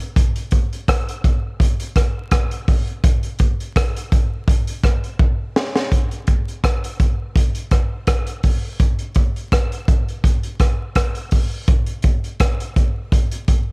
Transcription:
0.00 closed hi-hat
0.16 kick, closed hi-hat
0.36 closed hi-hat
0.51 kick, closed hi-hat
0.73 closed hi-hat
0.88 kick, cross-stick, closed hi-hat
1.09 closed hi-hat
1.24 kick, closed hi-hat
1.60 kick, closed hi-hat
1.80 closed hi-hat
1.96 kick, cross-stick, closed hi-hat
2.31 kick, cross-stick, closed hi-hat
2.51 closed hi-hat
2.68 kick, open hi-hat
2.87 closed hi-hat
3.04 kick, closed hi-hat
3.23 closed hi-hat
3.39 kick, closed hi-hat
3.60 closed hi-hat
3.76 kick, cross-stick, closed hi-hat
3.96 closed hi-hat
4.12 kick, closed hi-hat
4.48 kick, closed hi-hat
4.67 closed hi-hat
4.83 kick, cross-stick, closed hi-hat
5.04 closed hi-hat
5.19 kick
5.56 snare
5.75 snare
5.92 kick, closed hi-hat
6.11 closed hi-hat
6.27 kick, closed hi-hat
6.48 closed hi-hat
6.64 kick, cross-stick, closed hi-hat
6.84 closed hi-hat
7.00 kick, closed hi-hat
7.36 kick, closed hi-hat
7.55 closed hi-hat
7.71 kick, cross-stick, closed hi-hat
8.07 kick, cross-stick, closed hi-hat
8.27 closed hi-hat
8.43 kick, open hi-hat
8.80 kick, closed hi-hat
8.99 closed hi-hat
9.15 kick, closed hi-hat
9.36 closed hi-hat
9.52 kick, cross-stick, closed hi-hat
9.72 closed hi-hat
9.88 kick, closed hi-hat
10.09 closed hi-hat
10.24 kick, closed hi-hat
10.43 closed hi-hat
10.60 kick, cross-stick, closed hi-hat
10.95 kick, cross-stick, closed hi-hat
11.15 closed hi-hat
11.31 kick, open hi-hat
11.68 kick, closed hi-hat
11.86 closed hi-hat
12.02 kick, closed hi-hat
12.24 closed hi-hat
12.40 kick, cross-stick, closed hi-hat
12.60 closed hi-hat
12.76 kick, closed hi-hat
13.12 kick, closed hi-hat
13.31 closed hi-hat
13.48 kick, closed hi-hat

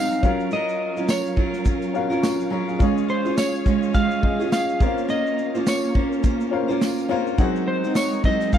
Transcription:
Already playing: F#3 G#3 C4 D#4 F#4 G#4 A#4 C5 F5 F#5 G#5
0.12 shaker
0.22 F#3 C#4 F4 F#4 A#4 F5, kick, shaker
0.40 shaker
0.51 F#3 C#4 F4 A#4 D#5, shaker
0.69 shaker
0.97 C#4 F4 A#4, shaker
1.08 C#5, snare, tambourine, shaker
1.26 shaker
1.36 F#3 C#4 F4 A#4, kick
1.54 snare, shaker
1.64 F#3 C#4 F4 A#4, kick, shaker
1.82 shaker
1.94 C#4 F4 F#4 A#4 F5, shaker
2.10 C#4 F4 A#4, shaker
2.22 F5 C#6, snare, tambourine, shaker
2.40 shaker
2.50 F#3 C#4 F4 A#4 C#5 A#5
2.68 G#4 F5, shaker
2.79 G#3 C#4 F4 G#4 C#5, kick, shaker
2.98 shaker
3.09 C5, shaker
3.25 C#4 F4 G#4, shaker
3.37 C#5, snare, tambourine, shaker
3.55 shaker
3.65 G#3 C#4 F4 G#4, kick, shaker
3.83 shaker
3.94 G#3 C#4 F4 G#4 F5, kick, shaker
4.11 shaker
4.22 F4 G#4 D#5, kick
4.39 C#4 F4 G#4, shaker
4.52 F5, snare, tambourine, shaker
4.69 shaker
4.80 A#3 C4 C#4 F4 A#4 C5 F5, kick, shaker
4.86 C#4
4.98 shaker
5.08 A#3 C#4 F4 C5 D#5, shaker
5.27 shaker
5.38 shaker
5.55 A#3 C#4 F4 C5, shaker
5.66 C#5, snare, tambourine, shaker
5.84 shaker
5.94 A#3 C#4 F4 C5, kick
6.12 shaker
6.23 A#3 C#4 F4 C5, kick, shaker
6.41 shaker
6.51 C#4 F4 A#4 C5 F5
6.68 A#3 C#4 F4 C5, shaker
6.81 snare, tambourine, shaker
6.98 shaker
7.08 A#3 C#4 F4 A#4 C5 F5
7.27 shaker
7.38 F#3 G#3 C4 D#4 F#4 G#4 C5 F#5, kick, shaker
7.56 shaker
7.68 C5
7.84 F#3 C4 D#4 C5, shaker
7.95 C#5, snare, tambourine, shaker
8.12 shaker
8.24 F#3 C4 D#4 C5 D#5, kick, shaker
8.41 snare, shaker
8.52 F#3 C4 D#4 C5 F5, kick, shaker

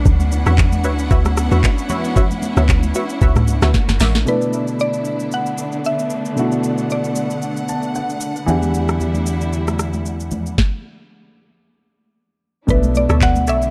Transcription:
Already playing: D4 F#5
0.05 D2 B3 C#4 E4, kick, low conga, shaker
0.20 high conga, shaker
0.32 high conga, shaker
0.46 E2 F#4 B4 C#5 E5, cross-stick, high conga, shaker
0.58 kick, clap, low conga, shaker
0.72 high conga, shaker
0.84 D2 F#4 B4 C#5 E5, shaker
0.99 shaker
1.11 D2 F#4 B4 C#5 E5, kick, shaker
1.25 cross-stick, high conga, shaker
1.37 cross-stick, shaker
1.51 E2 F#4 B4 C#5 E5, high conga, shaker
1.64 kick, clap, shaker
1.78 shaker
1.89 F#4 B4 C#5 E5, high conga, low conga, shaker
2.04 shaker
2.16 F#4 B4 C#5 E5, kick, low conga, shaker
2.31 high conga, shaker
2.42 high conga, shaker
2.57 D2 F#4 B4 C#5 E5, cross-stick, high conga, shaker
2.69 kick, clap, low conga, shaker
2.83 high conga, shaker
2.94 F#4 B4 C#5 E5, shaker
3.09 shaker
3.21 C#2 F#4 B4 C#5 E5, kick, shaker
3.36 cross-stick, mid tom, high conga, shaker
3.47 shaker
3.62 D2 F#4 B4 C#5 E5, cross-stick, snare, high conga, shaker
3.74 A#3 F#4, kick, snare, shaker
3.89 F#1, snare, shaker
4.00 A1 A#4 D5 E5, snare, open hi-hat, high conga, low conga, shaker
4.15 snare, shaker
4.25 B2 D3 A3 B3 D4 E4 B4 D5, shaker
4.41 shaker
4.53 shaker
4.67 shaker
4.79 D5, shaker
4.93 shaker
5.05 shaker
5.20 shaker
5.31 F#5, shaker
5.46 shaker
5.58 shaker
5.72 shaker
5.84 E5, shaker
5.99 shaker
6.10 shaker
6.25 shaker
6.36 B2 A3 D4 E4 F#4 F#5, shaker
6.52 shaker
6.64 shaker
6.78 shaker
6.90 D5, shaker
7.04 shaker
7.16 shaker
7.30 shaker
7.42 shaker
7.57 shaker
7.68 A5, shaker
7.83 shaker
7.95 F#5, shaker
8.10 shaker
8.21 shaker
8.36 shaker
8.46 E2 D3 E3 G3 D4 E4 G4 F#5, low conga, shaker
8.62 high conga, shaker
8.74 high conga, shaker
8.88 cross-stick, shaker
9.00 low conga, shaker
9.15 high conga, shaker
9.26 shaker
9.41 shaker
9.53 shaker
9.67 cross-stick, high conga, shaker
9.79 cross-stick, shaker
9.93 high conga, shaker
10.06 shaker
10.20 shaker
10.31 high conga, low conga, shaker
10.46 shaker
10.58 kick, snare
12.67 B1 B2 D3 A3 B3 D4 E4 B4 D5 E5, kick, low conga, shaker
12.83 high conga, shaker
12.95 D5, high conga, shaker
13.09 D2 A4 C#5 D5 E5, cross-stick, high conga, shaker
13.21 F#5, kick, clap, low conga, shaker
13.36 high conga, shaker
13.47 B1 A4 C#5 D5 E5, shaker
13.62 shaker

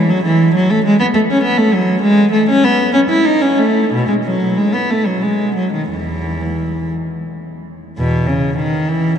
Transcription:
Already playing: E3
0.10 F#3
0.25 E3
0.55 F#3
0.71 A3
0.85 G#3
1.00 B3
1.14 A3
1.31 C#4
1.44 B3
1.58 A3
1.74 F#3
2.02 G#3
2.32 A3
2.49 C#4
2.64 B3
2.94 C#4
3.09 E4
3.25 D#4
3.42 C#4
3.58 A3
3.93 B2
4.08 G#3
4.24 F#3
4.58 G#3
4.74 B3
4.90 A3
5.06 F#3
5.22 G#3
5.56 F#3
5.73 D#3
5.90 E2 E3
7.98 E2 B2
8.27 C#3
8.57 D#3
8.89 E3

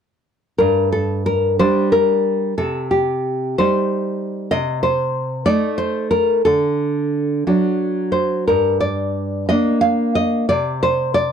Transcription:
0.58 G2 A#4
0.92 A4
1.26 A#4
1.59 G3 D4 C5
1.92 A#4
2.58 C3 A4
2.91 G4
3.58 G3 D#4 C5
4.51 C3 D#5
4.83 C5
5.46 A3 D#4 D5
5.78 C5
6.11 A#4
6.45 D3 A4
7.47 F#3 D4
8.12 C5
8.47 G2 A#4
8.80 D5
9.49 A#3 D4 D#5
9.81 F5
10.15 D#5
10.49 C3 D5
10.83 C5
11.14 D5

